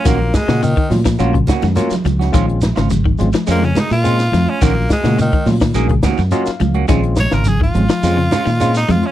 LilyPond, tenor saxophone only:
\new Staff \with { instrumentName = "Tenor saxophone" } { \time 4/4 \key bes \minor \tempo 4 = 105 bes8 aes8 ees8 r2 r8 | r2 bes16 des'16 ees'16 f'4 des'16 | bes8 aes8 ees8 r2 r8 | r8 des''16 bes'16 aes'16 f'2 ees'16 f'16 des'16 | }